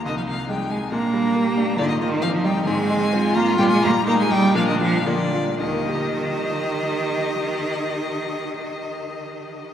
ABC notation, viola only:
X:1
M:4/4
L:1/8
Q:1/4=121
K:Eb
V:1 name="Viola"
E2 E2 D2 G2 | F2 E2 C2 F2- | F2 E2 D2 F z | G8- |
G8 |]